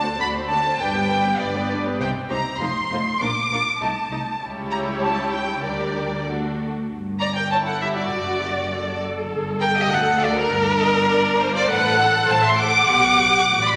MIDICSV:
0, 0, Header, 1, 6, 480
1, 0, Start_track
1, 0, Key_signature, -2, "minor"
1, 0, Tempo, 601202
1, 643, Time_signature, 2, 2, 24, 8
1, 3525, Tempo, 617284
1, 5925, Tempo, 598205
1, 10948, End_track
2, 0, Start_track
2, 0, Title_t, "Violin section"
2, 0, Program_c, 0, 48
2, 0, Note_on_c, 0, 81, 92
2, 159, Note_off_c, 0, 81, 0
2, 167, Note_on_c, 0, 83, 85
2, 231, Note_off_c, 0, 83, 0
2, 406, Note_on_c, 0, 81, 93
2, 639, Note_off_c, 0, 81, 0
2, 648, Note_on_c, 0, 79, 90
2, 1123, Note_off_c, 0, 79, 0
2, 1124, Note_on_c, 0, 74, 76
2, 1361, Note_off_c, 0, 74, 0
2, 1601, Note_on_c, 0, 79, 75
2, 1665, Note_off_c, 0, 79, 0
2, 1845, Note_on_c, 0, 82, 82
2, 2077, Note_off_c, 0, 82, 0
2, 2081, Note_on_c, 0, 84, 78
2, 2558, Note_on_c, 0, 86, 90
2, 2562, Note_off_c, 0, 84, 0
2, 3035, Note_on_c, 0, 81, 68
2, 3041, Note_off_c, 0, 86, 0
2, 3510, Note_off_c, 0, 81, 0
2, 3754, Note_on_c, 0, 82, 81
2, 3816, Note_off_c, 0, 82, 0
2, 3996, Note_on_c, 0, 81, 70
2, 4234, Note_off_c, 0, 81, 0
2, 4236, Note_on_c, 0, 79, 73
2, 4476, Note_off_c, 0, 79, 0
2, 4478, Note_on_c, 0, 74, 60
2, 4957, Note_off_c, 0, 74, 0
2, 5686, Note_on_c, 0, 82, 93
2, 5797, Note_off_c, 0, 82, 0
2, 5810, Note_on_c, 0, 79, 82
2, 5923, Note_off_c, 0, 79, 0
2, 5926, Note_on_c, 0, 81, 93
2, 5974, Note_off_c, 0, 81, 0
2, 6053, Note_on_c, 0, 78, 74
2, 6167, Note_off_c, 0, 78, 0
2, 6171, Note_on_c, 0, 76, 90
2, 6218, Note_off_c, 0, 76, 0
2, 6287, Note_on_c, 0, 74, 87
2, 7113, Note_off_c, 0, 74, 0
2, 7614, Note_on_c, 0, 79, 100
2, 7724, Note_off_c, 0, 79, 0
2, 7742, Note_on_c, 0, 75, 94
2, 7856, Note_off_c, 0, 75, 0
2, 7864, Note_on_c, 0, 78, 98
2, 8094, Note_on_c, 0, 74, 99
2, 8097, Note_off_c, 0, 78, 0
2, 8212, Note_off_c, 0, 74, 0
2, 8216, Note_on_c, 0, 70, 123
2, 9145, Note_off_c, 0, 70, 0
2, 9174, Note_on_c, 0, 74, 108
2, 9283, Note_on_c, 0, 78, 117
2, 9286, Note_off_c, 0, 74, 0
2, 9749, Note_off_c, 0, 78, 0
2, 9760, Note_on_c, 0, 81, 114
2, 9878, Note_off_c, 0, 81, 0
2, 9892, Note_on_c, 0, 84, 105
2, 10003, Note_on_c, 0, 86, 127
2, 10004, Note_off_c, 0, 84, 0
2, 10830, Note_off_c, 0, 86, 0
2, 10854, Note_on_c, 0, 83, 100
2, 10948, Note_off_c, 0, 83, 0
2, 10948, End_track
3, 0, Start_track
3, 0, Title_t, "Violin section"
3, 0, Program_c, 1, 48
3, 40, Note_on_c, 1, 69, 54
3, 43, Note_on_c, 1, 72, 53
3, 163, Note_off_c, 1, 69, 0
3, 163, Note_on_c, 1, 66, 55
3, 163, Note_on_c, 1, 74, 59
3, 164, Note_off_c, 1, 72, 0
3, 273, Note_on_c, 1, 69, 50
3, 276, Note_off_c, 1, 66, 0
3, 276, Note_off_c, 1, 74, 0
3, 279, Note_on_c, 1, 72, 53
3, 399, Note_off_c, 1, 69, 0
3, 402, Note_off_c, 1, 72, 0
3, 404, Note_on_c, 1, 66, 52
3, 404, Note_on_c, 1, 74, 54
3, 520, Note_on_c, 1, 72, 48
3, 523, Note_on_c, 1, 69, 51
3, 524, Note_off_c, 1, 66, 0
3, 524, Note_off_c, 1, 74, 0
3, 641, Note_off_c, 1, 72, 0
3, 643, Note_off_c, 1, 69, 0
3, 646, Note_on_c, 1, 74, 63
3, 647, Note_on_c, 1, 71, 62
3, 752, Note_off_c, 1, 71, 0
3, 755, Note_off_c, 1, 74, 0
3, 761, Note_on_c, 1, 67, 56
3, 761, Note_on_c, 1, 71, 57
3, 865, Note_off_c, 1, 71, 0
3, 872, Note_on_c, 1, 74, 59
3, 874, Note_on_c, 1, 71, 63
3, 881, Note_off_c, 1, 67, 0
3, 995, Note_off_c, 1, 71, 0
3, 996, Note_off_c, 1, 74, 0
3, 1002, Note_on_c, 1, 67, 57
3, 1004, Note_on_c, 1, 71, 60
3, 1112, Note_off_c, 1, 71, 0
3, 1121, Note_off_c, 1, 67, 0
3, 1122, Note_on_c, 1, 71, 61
3, 1122, Note_on_c, 1, 74, 57
3, 1233, Note_off_c, 1, 71, 0
3, 1233, Note_off_c, 1, 74, 0
3, 1241, Note_on_c, 1, 67, 57
3, 1241, Note_on_c, 1, 71, 56
3, 1357, Note_off_c, 1, 71, 0
3, 1360, Note_off_c, 1, 67, 0
3, 1367, Note_on_c, 1, 71, 61
3, 1368, Note_on_c, 1, 74, 60
3, 1475, Note_off_c, 1, 71, 0
3, 1483, Note_off_c, 1, 74, 0
3, 1484, Note_on_c, 1, 67, 54
3, 1484, Note_on_c, 1, 71, 54
3, 1577, Note_off_c, 1, 67, 0
3, 1586, Note_on_c, 1, 72, 67
3, 1587, Note_on_c, 1, 67, 67
3, 1601, Note_off_c, 1, 71, 0
3, 1650, Note_off_c, 1, 72, 0
3, 1651, Note_off_c, 1, 67, 0
3, 1830, Note_on_c, 1, 67, 63
3, 1830, Note_on_c, 1, 72, 62
3, 1893, Note_off_c, 1, 67, 0
3, 1894, Note_off_c, 1, 72, 0
3, 2080, Note_on_c, 1, 65, 61
3, 2082, Note_on_c, 1, 72, 59
3, 2143, Note_off_c, 1, 65, 0
3, 2146, Note_off_c, 1, 72, 0
3, 2333, Note_on_c, 1, 65, 58
3, 2335, Note_on_c, 1, 72, 56
3, 2397, Note_off_c, 1, 65, 0
3, 2399, Note_off_c, 1, 72, 0
3, 2566, Note_on_c, 1, 65, 60
3, 2568, Note_on_c, 1, 70, 65
3, 2630, Note_off_c, 1, 65, 0
3, 2632, Note_off_c, 1, 70, 0
3, 2814, Note_on_c, 1, 70, 58
3, 2816, Note_on_c, 1, 65, 56
3, 2878, Note_off_c, 1, 70, 0
3, 2880, Note_off_c, 1, 65, 0
3, 3040, Note_on_c, 1, 63, 52
3, 3041, Note_on_c, 1, 75, 57
3, 3104, Note_off_c, 1, 63, 0
3, 3105, Note_off_c, 1, 75, 0
3, 3282, Note_on_c, 1, 63, 52
3, 3283, Note_on_c, 1, 75, 53
3, 3346, Note_off_c, 1, 63, 0
3, 3347, Note_off_c, 1, 75, 0
3, 3521, Note_on_c, 1, 73, 66
3, 3523, Note_on_c, 1, 67, 66
3, 4451, Note_off_c, 1, 73, 0
3, 4452, Note_off_c, 1, 67, 0
3, 4478, Note_on_c, 1, 70, 56
3, 4479, Note_on_c, 1, 67, 51
3, 4956, Note_off_c, 1, 70, 0
3, 4957, Note_off_c, 1, 67, 0
3, 4963, Note_on_c, 1, 69, 48
3, 4967, Note_on_c, 1, 66, 51
3, 5286, Note_off_c, 1, 66, 0
3, 5290, Note_off_c, 1, 69, 0
3, 5691, Note_on_c, 1, 74, 80
3, 5738, Note_off_c, 1, 74, 0
3, 5811, Note_on_c, 1, 70, 74
3, 5857, Note_off_c, 1, 70, 0
3, 5940, Note_on_c, 1, 73, 79
3, 5985, Note_off_c, 1, 73, 0
3, 6060, Note_on_c, 1, 69, 70
3, 6170, Note_off_c, 1, 69, 0
3, 6183, Note_on_c, 1, 67, 74
3, 6294, Note_off_c, 1, 67, 0
3, 6312, Note_on_c, 1, 66, 69
3, 7126, Note_off_c, 1, 66, 0
3, 7613, Note_on_c, 1, 70, 93
3, 7660, Note_off_c, 1, 70, 0
3, 7734, Note_on_c, 1, 67, 87
3, 7850, Note_off_c, 1, 67, 0
3, 7860, Note_on_c, 1, 69, 89
3, 7925, Note_off_c, 1, 69, 0
3, 8095, Note_on_c, 1, 66, 87
3, 8142, Note_off_c, 1, 66, 0
3, 8224, Note_on_c, 1, 62, 89
3, 9149, Note_off_c, 1, 62, 0
3, 9159, Note_on_c, 1, 65, 82
3, 9273, Note_on_c, 1, 69, 108
3, 9280, Note_off_c, 1, 65, 0
3, 9744, Note_off_c, 1, 69, 0
3, 9747, Note_on_c, 1, 72, 104
3, 9855, Note_on_c, 1, 76, 93
3, 9871, Note_off_c, 1, 72, 0
3, 9974, Note_on_c, 1, 78, 112
3, 9985, Note_off_c, 1, 76, 0
3, 10816, Note_off_c, 1, 78, 0
3, 10829, Note_on_c, 1, 74, 90
3, 10948, Note_off_c, 1, 74, 0
3, 10948, End_track
4, 0, Start_track
4, 0, Title_t, "Viola section"
4, 0, Program_c, 2, 48
4, 45, Note_on_c, 2, 60, 55
4, 47, Note_on_c, 2, 66, 53
4, 165, Note_off_c, 2, 60, 0
4, 166, Note_off_c, 2, 66, 0
4, 166, Note_on_c, 2, 57, 56
4, 166, Note_on_c, 2, 62, 53
4, 277, Note_off_c, 2, 57, 0
4, 277, Note_off_c, 2, 62, 0
4, 288, Note_on_c, 2, 60, 58
4, 291, Note_on_c, 2, 66, 55
4, 406, Note_off_c, 2, 60, 0
4, 408, Note_off_c, 2, 66, 0
4, 413, Note_on_c, 2, 57, 54
4, 414, Note_on_c, 2, 62, 56
4, 528, Note_off_c, 2, 57, 0
4, 528, Note_off_c, 2, 62, 0
4, 532, Note_on_c, 2, 60, 54
4, 535, Note_on_c, 2, 66, 58
4, 647, Note_off_c, 2, 60, 0
4, 648, Note_on_c, 2, 62, 63
4, 649, Note_off_c, 2, 66, 0
4, 649, Note_on_c, 2, 55, 61
4, 756, Note_off_c, 2, 62, 0
4, 757, Note_off_c, 2, 55, 0
4, 767, Note_on_c, 2, 59, 56
4, 769, Note_off_c, 2, 59, 0
4, 769, Note_on_c, 2, 59, 55
4, 885, Note_off_c, 2, 59, 0
4, 887, Note_on_c, 2, 62, 59
4, 889, Note_on_c, 2, 55, 55
4, 1004, Note_off_c, 2, 62, 0
4, 1005, Note_off_c, 2, 55, 0
4, 1014, Note_on_c, 2, 59, 59
4, 1015, Note_off_c, 2, 59, 0
4, 1015, Note_on_c, 2, 59, 61
4, 1128, Note_off_c, 2, 59, 0
4, 1130, Note_on_c, 2, 55, 63
4, 1133, Note_on_c, 2, 62, 65
4, 1237, Note_off_c, 2, 55, 0
4, 1239, Note_off_c, 2, 62, 0
4, 1247, Note_on_c, 2, 59, 59
4, 1248, Note_off_c, 2, 59, 0
4, 1248, Note_on_c, 2, 59, 61
4, 1364, Note_off_c, 2, 59, 0
4, 1373, Note_on_c, 2, 55, 61
4, 1375, Note_on_c, 2, 62, 64
4, 1486, Note_off_c, 2, 55, 0
4, 1487, Note_off_c, 2, 62, 0
4, 1488, Note_on_c, 2, 59, 59
4, 1491, Note_off_c, 2, 59, 0
4, 1491, Note_on_c, 2, 59, 60
4, 1603, Note_on_c, 2, 63, 62
4, 1604, Note_off_c, 2, 59, 0
4, 1606, Note_on_c, 2, 60, 69
4, 1667, Note_off_c, 2, 63, 0
4, 1670, Note_off_c, 2, 60, 0
4, 1840, Note_on_c, 2, 63, 59
4, 1841, Note_on_c, 2, 60, 61
4, 1904, Note_off_c, 2, 63, 0
4, 1905, Note_off_c, 2, 60, 0
4, 2073, Note_on_c, 2, 63, 61
4, 2075, Note_on_c, 2, 57, 65
4, 2137, Note_off_c, 2, 63, 0
4, 2139, Note_off_c, 2, 57, 0
4, 2323, Note_on_c, 2, 57, 61
4, 2326, Note_on_c, 2, 63, 60
4, 2387, Note_off_c, 2, 57, 0
4, 2390, Note_off_c, 2, 63, 0
4, 2558, Note_on_c, 2, 62, 63
4, 2563, Note_on_c, 2, 58, 68
4, 2622, Note_off_c, 2, 62, 0
4, 2627, Note_off_c, 2, 58, 0
4, 2808, Note_on_c, 2, 58, 53
4, 2808, Note_on_c, 2, 62, 52
4, 2872, Note_off_c, 2, 58, 0
4, 2872, Note_off_c, 2, 62, 0
4, 3044, Note_on_c, 2, 57, 54
4, 3046, Note_on_c, 2, 63, 58
4, 3108, Note_off_c, 2, 57, 0
4, 3110, Note_off_c, 2, 63, 0
4, 3282, Note_on_c, 2, 57, 54
4, 3285, Note_on_c, 2, 63, 55
4, 3346, Note_off_c, 2, 57, 0
4, 3349, Note_off_c, 2, 63, 0
4, 3524, Note_on_c, 2, 64, 65
4, 3530, Note_on_c, 2, 55, 65
4, 4453, Note_off_c, 2, 64, 0
4, 4456, Note_off_c, 2, 55, 0
4, 4481, Note_on_c, 2, 62, 56
4, 4482, Note_on_c, 2, 55, 53
4, 4957, Note_off_c, 2, 62, 0
4, 4959, Note_off_c, 2, 55, 0
4, 4966, Note_on_c, 2, 62, 53
4, 4969, Note_on_c, 2, 57, 51
4, 5285, Note_off_c, 2, 62, 0
4, 5287, Note_off_c, 2, 57, 0
4, 5929, Note_on_c, 2, 64, 74
4, 6375, Note_off_c, 2, 64, 0
4, 6410, Note_on_c, 2, 66, 75
4, 6641, Note_on_c, 2, 67, 71
4, 6649, Note_off_c, 2, 66, 0
4, 6705, Note_off_c, 2, 67, 0
4, 6889, Note_on_c, 2, 69, 80
4, 7832, Note_off_c, 2, 69, 0
4, 7856, Note_on_c, 2, 69, 96
4, 8321, Note_off_c, 2, 69, 0
4, 8330, Note_on_c, 2, 70, 87
4, 8394, Note_off_c, 2, 70, 0
4, 8572, Note_on_c, 2, 75, 90
4, 8637, Note_off_c, 2, 75, 0
4, 8801, Note_on_c, 2, 74, 84
4, 9036, Note_off_c, 2, 74, 0
4, 9040, Note_on_c, 2, 72, 94
4, 9279, Note_on_c, 2, 71, 100
4, 9281, Note_off_c, 2, 72, 0
4, 9519, Note_off_c, 2, 71, 0
4, 9522, Note_on_c, 2, 69, 97
4, 10224, Note_off_c, 2, 69, 0
4, 10238, Note_on_c, 2, 67, 85
4, 10722, Note_on_c, 2, 66, 86
4, 10724, Note_off_c, 2, 67, 0
4, 10948, Note_off_c, 2, 66, 0
4, 10948, End_track
5, 0, Start_track
5, 0, Title_t, "Cello section"
5, 0, Program_c, 3, 48
5, 0, Note_on_c, 3, 38, 74
5, 108, Note_off_c, 3, 38, 0
5, 164, Note_on_c, 3, 38, 64
5, 586, Note_off_c, 3, 38, 0
5, 638, Note_on_c, 3, 43, 78
5, 1061, Note_off_c, 3, 43, 0
5, 1120, Note_on_c, 3, 43, 78
5, 1542, Note_off_c, 3, 43, 0
5, 1594, Note_on_c, 3, 48, 77
5, 1658, Note_off_c, 3, 48, 0
5, 1834, Note_on_c, 3, 48, 69
5, 1898, Note_off_c, 3, 48, 0
5, 2077, Note_on_c, 3, 41, 63
5, 2141, Note_off_c, 3, 41, 0
5, 2319, Note_on_c, 3, 41, 59
5, 2383, Note_off_c, 3, 41, 0
5, 2561, Note_on_c, 3, 46, 81
5, 2625, Note_off_c, 3, 46, 0
5, 2799, Note_on_c, 3, 46, 67
5, 2863, Note_off_c, 3, 46, 0
5, 3038, Note_on_c, 3, 48, 66
5, 3102, Note_off_c, 3, 48, 0
5, 3281, Note_on_c, 3, 48, 58
5, 3344, Note_off_c, 3, 48, 0
5, 3527, Note_on_c, 3, 49, 76
5, 4454, Note_off_c, 3, 49, 0
5, 4483, Note_on_c, 3, 50, 59
5, 5277, Note_off_c, 3, 50, 0
5, 5457, Note_on_c, 3, 43, 78
5, 6376, Note_off_c, 3, 43, 0
5, 6411, Note_on_c, 3, 42, 76
5, 7354, Note_off_c, 3, 42, 0
5, 7372, Note_on_c, 3, 43, 79
5, 7842, Note_off_c, 3, 43, 0
5, 7853, Note_on_c, 3, 38, 83
5, 8323, Note_on_c, 3, 43, 89
5, 8329, Note_off_c, 3, 38, 0
5, 9259, Note_off_c, 3, 43, 0
5, 9275, Note_on_c, 3, 45, 109
5, 9676, Note_off_c, 3, 45, 0
5, 9753, Note_on_c, 3, 45, 93
5, 10154, Note_off_c, 3, 45, 0
5, 10229, Note_on_c, 3, 47, 99
5, 10638, Note_off_c, 3, 47, 0
5, 10723, Note_on_c, 3, 45, 84
5, 10948, Note_off_c, 3, 45, 0
5, 10948, End_track
6, 0, Start_track
6, 0, Title_t, "Double bass section"
6, 0, Program_c, 4, 48
6, 0, Note_on_c, 4, 38, 67
6, 107, Note_off_c, 4, 38, 0
6, 162, Note_on_c, 4, 38, 70
6, 585, Note_off_c, 4, 38, 0
6, 642, Note_on_c, 4, 31, 79
6, 1063, Note_off_c, 4, 31, 0
6, 1115, Note_on_c, 4, 31, 79
6, 1539, Note_off_c, 4, 31, 0
6, 1595, Note_on_c, 4, 36, 76
6, 1659, Note_off_c, 4, 36, 0
6, 1835, Note_on_c, 4, 36, 72
6, 1899, Note_off_c, 4, 36, 0
6, 2073, Note_on_c, 4, 29, 72
6, 2137, Note_off_c, 4, 29, 0
6, 2312, Note_on_c, 4, 29, 68
6, 2376, Note_off_c, 4, 29, 0
6, 2556, Note_on_c, 4, 34, 74
6, 2619, Note_off_c, 4, 34, 0
6, 2798, Note_on_c, 4, 34, 64
6, 2862, Note_off_c, 4, 34, 0
6, 3032, Note_on_c, 4, 36, 69
6, 3095, Note_off_c, 4, 36, 0
6, 3277, Note_on_c, 4, 36, 61
6, 3341, Note_off_c, 4, 36, 0
6, 3518, Note_on_c, 4, 37, 71
6, 4450, Note_off_c, 4, 37, 0
6, 4481, Note_on_c, 4, 38, 56
6, 5276, Note_off_c, 4, 38, 0
6, 5454, Note_on_c, 4, 31, 71
6, 6374, Note_off_c, 4, 31, 0
6, 6406, Note_on_c, 4, 30, 74
6, 7351, Note_off_c, 4, 30, 0
6, 7367, Note_on_c, 4, 31, 80
6, 7839, Note_off_c, 4, 31, 0
6, 7851, Note_on_c, 4, 38, 87
6, 8326, Note_on_c, 4, 31, 95
6, 8329, Note_off_c, 4, 38, 0
6, 9261, Note_off_c, 4, 31, 0
6, 9279, Note_on_c, 4, 33, 105
6, 9678, Note_off_c, 4, 33, 0
6, 9752, Note_on_c, 4, 33, 97
6, 10153, Note_off_c, 4, 33, 0
6, 10235, Note_on_c, 4, 35, 97
6, 10641, Note_off_c, 4, 35, 0
6, 10720, Note_on_c, 4, 33, 93
6, 10948, Note_off_c, 4, 33, 0
6, 10948, End_track
0, 0, End_of_file